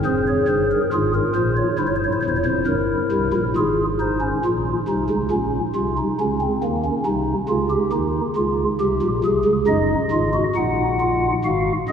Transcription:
0.05 F1 F2 G#4 C5
0.28 C#5
0.48 G1 G2 C5
0.72 A#4
0.93 G#1 G#2 F4 G#4
1.15 A#4
1.35 A#1 A#2 C5
1.57 C#5
1.78 G1 G2 E4 C5
1.87 C#5
1.96 C5
2.04 C#5
2.13 C5
2.21 E1 E2 C#5
2.29 C5
2.36 C#5
2.44 F1 F2 C5
2.66 G1 G2 A#4
3.12 C2 C3
3.33 A#1 A#2
3.56 G#1 G#2 F4 G#4
4.00 D#4 C5
4.21 C#4
4.45 A#1 A#2 F4
4.88 C2 C3 D#4
5.10 C#2 C#3
5.31 A#1 A#2 C#4
5.75 C2 C3 F4
5.98 D#4
6.20 C#2 C#3 C#4
6.42 C4
6.63 D#2 D#3 A#3
6.85 C#4
7.06 C2 C3 D#4
7.49 C#2 C#3 F4
7.71 G4
7.92 D#2 D#3 D#4
8.36 C#2 C#3 F4
8.80 C2 C3 G4
9.02 A#1 A#2
9.24 C2 C3 G#4
9.45 C#2 C#3
9.67 F#1 F#2 D#4 D#5
10.11 G#1 G#2 F4
10.34 F#4
10.56 A#1 A#2 D#4 F#5
11.00 F4
11.45 G#1 G#2 F#4 F5
11.88 F#1 F#2 G#4 D#5

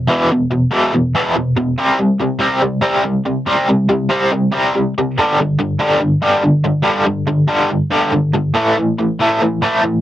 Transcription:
0.07 E2 B2 E3
0.31 E2 B2
0.51 E2 B2
0.71 E2 B2 E3
0.94 E2 B2
1.15 E2 B2 E3
1.36 E2 B2
1.57 E2 B2
1.78 C3 G3 C4
1.99 C3 G3
2.20 C3 G3
2.39 C3 G3 C4
2.61 C3 G3
2.82 C3 G3 C4
3.04 C3 G3
3.26 C3 G3
3.46 C3 G3 C4
3.69 C3 G3
3.89 C3 G3
4.10 C3 G3 C4
4.32 C3 G3
4.52 C3 G3 C4
4.75 C3 G3
4.98 C3 G3
5.18 G2 D3 G3
5.40 G2 D3
5.60 G2 D3
5.80 G2 D3 G3
6.00 G2 D3
6.22 G2 D3 G3
6.43 G2 D3
6.64 G2 D3
6.83 G2 D3 G3
7.06 G2 D3
7.28 G2 D3
7.48 G2 D3 G3
7.71 G2 D3
7.91 G2 D3 G3
8.12 G2 D3
8.34 G2 D3
8.55 A2 E3 A3
8.78 A2 E3
8.99 A2 E3
9.19 A2 E3 A3
9.41 A2 E3
9.62 A2 E3 A3
9.82 A2 E3

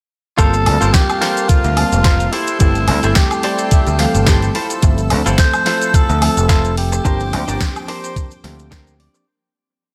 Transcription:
0.37 G1 G3 A#3 C4 F4 A4 A#4 C5 F5 A5 C6, kick, closed hi-hat, maracas
0.53 closed hi-hat, maracas
0.66 D2, muted clean electric guitar stroke, open hi-hat, high woodblock
0.81 G1 F4 A4 A#4 C5, closed hi-hat, maracas
0.93 G4, kick, snare, closed hi-hat, maracas
1.09 muted clean electric guitar stroke, closed hi-hat, high woodblock, maracas
1.21 F4 A4 A#4 C5, snare, open hi-hat
1.37 closed hi-hat, maracas
1.49 F4, muted picked electric bass stroke, kick, closed hi-hat, maracas
1.64 D2, closed hi-hat, maracas
1.77 G3 A#3 C4 F4 A5, open hi-hat, high woodblock
1.92 F1, closed hi-hat, maracas
2.04 F4 A4 A#4 C5, kick, snare, closed hi-hat, maracas
2.20 closed hi-hat, maracas
2.32 E4 G4 A4 C5 G5, open hi-hat
2.47 closed hi-hat, maracas
2.59 G1 G3 A3 C4 E4 A4, kick, closed hi-hat, maracas
2.75 closed hi-hat, maracas
2.88 D2, muted clean electric guitar stroke, open hi-hat, high woodblock
3.03 G1 E4 G4 A4 C5, closed hi-hat, maracas
3.15 G4, kick, snare, closed hi-hat, maracas
3.31 muted clean electric guitar stroke, closed hi-hat, high woodblock, maracas
3.43 E4 G4 A4 C5 D5, open hi-hat
3.58 closed hi-hat, maracas
3.71 E5, kick, closed hi-hat, maracas
3.87 D2, closed hi-hat, maracas
3.99 E3 G3 A3 C4 A4 F5, snare, open hi-hat
4.15 G1, closed hi-hat, maracas
4.26 E4 G4 A4 C5 G5, kick, snare, closed hi-hat, maracas
4.42 closed hi-hat, maracas
4.55 E4 F4 A4 C5 A5 E6, open hi-hat
4.70 closed hi-hat, maracas
4.82 G1 F3 A3 C4 A4 E5, kick, closed hi-hat, maracas
4.98 closed hi-hat, maracas
5.10 D2, muted clean electric guitar stroke, open hi-hat, high woodblock
5.26 G1 E4 F4 A4 C5, closed hi-hat, maracas
5.38 C5, kick, snare, closed hi-hat, maracas
5.53 muted clean electric guitar stroke, closed hi-hat, high woodblock, maracas
5.66 E4 F4 A4 C5, snare, open hi-hat
5.82 closed hi-hat, maracas
5.94 A4, muted picked electric bass stroke, kick, closed hi-hat, maracas
6.10 D2, closed hi-hat, maracas
6.21 F3 A3 C4 A4 E5, open hi-hat, high woodblock
6.37 F1, closed hi-hat, maracas
6.49 E4 F4 A4 C5, kick, snare, closed hi-hat, maracas
6.65 closed hi-hat, maracas
6.77 G4, open hi-hat
6.92 muted clean electric guitar stroke, closed hi-hat, maracas
7.04 G1 F3 A#3 C4 D4 G4 A#4 C5 G5 D6, kick, closed hi-hat, maracas
7.20 closed hi-hat, maracas
7.33 D2, muted clean electric guitar stroke, open hi-hat, high woodblock
7.48 G1 D4 G4 A#4 D5, closed hi-hat, maracas
7.61 kick, snare, closed hi-hat, maracas
7.76 muted clean electric guitar stroke, closed hi-hat, high woodblock, maracas
7.88 D4 G4 A#4 C5, open hi-hat
8.04 closed hi-hat, maracas
8.16 kick, closed hi-hat, maracas
8.31 closed hi-hat, maracas
8.43 D2 F3 A#3 C4 D4 G4, snare, open hi-hat
8.59 closed hi-hat, maracas
8.71 D4 G4 A#4 C5 G5, kick, snare, closed hi-hat, maracas
8.87 closed hi-hat, maracas
9.00 D5, open hi-hat
9.14 muted clean electric guitar stroke, closed hi-hat, maracas

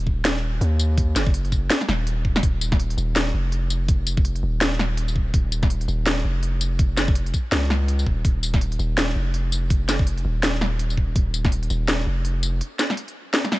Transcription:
Already playing: D#1
0.07 kick
0.25 snare, closed hi-hat
0.61 D#2, closed hi-hat
0.79 tambourine
0.98 kick, closed hi-hat
1.16 F#1, snare, closed hi-hat, tambourine
1.27 kick
1.34 closed hi-hat
1.45 closed hi-hat
1.52 kick, tambourine
1.70 snare, closed hi-hat
1.81 snare, closed hi-hat
1.89 D#1, snare
2.07 closed hi-hat
2.25 kick
2.36 snare
2.43 D#1, kick, closed hi-hat
2.61 tambourine
2.72 kick, snare
2.80 closed hi-hat
2.90 closed hi-hat
2.98 D#1, tambourine
3.16 snare, closed hi-hat
3.34 F1
3.52 closed hi-hat
3.70 tambourine
3.88 kick, closed hi-hat
4.07 tambourine
4.17 kick
4.25 closed hi-hat
4.36 closed hi-hat
4.43 D#1
4.61 snare, closed hi-hat
4.79 snare
4.97 closed hi-hat
5.08 tambourine
5.16 kick
5.34 D#1, kick, closed hi-hat
5.52 tambourine
5.63 kick, snare
5.70 closed hi-hat
5.81 closed hi-hat
5.88 D#1, tambourine
6.06 snare, closed hi-hat
6.25 F1
6.43 closed hi-hat
6.61 tambourine
6.79 kick, closed hi-hat
6.97 snare, tambourine
7.08 kick
7.15 closed hi-hat
7.26 closed hi-hat
7.34 kick, tambourine
7.52 C#2, snare, closed hi-hat
7.70 snare
7.88 closed hi-hat
7.99 tambourine
8.06 D#1, kick
8.25 D#1, kick, closed hi-hat
8.43 tambourine
8.54 kick, snare
8.61 closed hi-hat
8.72 closed hi-hat
8.79 D#1, tambourine
8.98 snare, closed hi-hat
9.16 F1
9.34 closed hi-hat
9.52 tambourine
9.70 kick, closed hi-hat
9.89 snare, tambourine
9.99 kick
10.07 closed hi-hat
10.18 closed hi-hat
10.25 D#1
10.43 snare, closed hi-hat
10.61 snare
10.79 closed hi-hat
10.90 tambourine
10.97 kick
11.16 D#1, kick, closed hi-hat
11.34 tambourine
11.45 kick, snare
11.52 closed hi-hat
11.63 closed hi-hat
11.70 D#1, tambourine
11.88 snare, closed hi-hat
12.06 F1
12.25 closed hi-hat
12.43 tambourine
12.61 closed hi-hat
12.79 snare, closed hi-hat, tambourine
12.90 snare
12.97 closed hi-hat
13.08 closed hi-hat
13.34 snare, closed hi-hat
13.44 snare, closed hi-hat
13.52 snare

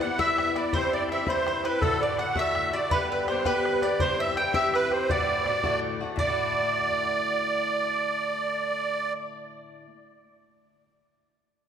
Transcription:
0.01 G2 E3 B3 E4 F#5, bodhran
0.18 G2 E3 B3 E4 E5, bodhran
0.38 bodhran
0.55 E3 B3 E4 D5, bodhran
0.73 G2 E3 C4 E4 C5, bodhran
0.82 bodhran
0.93 D5
1.09 G2 E3 C4 E5, bodhran
1.13 E4
1.27 G2 E3 C4 E4 C5, bodhran
1.47 C5, bodhran
1.64 E3 C4 E4 B4, bodhran
1.81 A2 D3 A3 F#4 A4, bodhran
1.92 bodhran
2.01 D5
2.19 A2 D3 A3 F#4 F#5, bodhran
2.35 A2 D3 A3 F#4 E5, bodhran
2.55 bodhran
2.73 D3 A3 F#4 D5, bodhran
2.91 G2 D3 B3 G4 B4, bodhran
3.11 B4
3.27 G2 D3 B3 C5, bodhran
3.32 G4
3.45 G2 D3 B3 G4 B4, bodhran
3.65 bodhran
3.82 D3 B3 G4 D5, bodhran
4.00 G2 E3 C4 G4 C5, bodhran
4.10 bodhran
4.20 E5
4.37 G2 E3 C4 G4 G5, bodhran
4.54 G2 E3 C4 G4 E5, bodhran
4.74 B4, bodhran
4.91 E3 C4 G4 C5, bodhran
5.09 A2 D3 A3 F#4 D5, bodhran
5.19 bodhran
5.46 A2 D3 A3 F#4, bodhran
5.64 A2 D3 A3 F#4, bodhran
6.01 D3 A3 F#4
6.16 A2 D5, bodhran
6.21 D3
6.26 A3 F#4

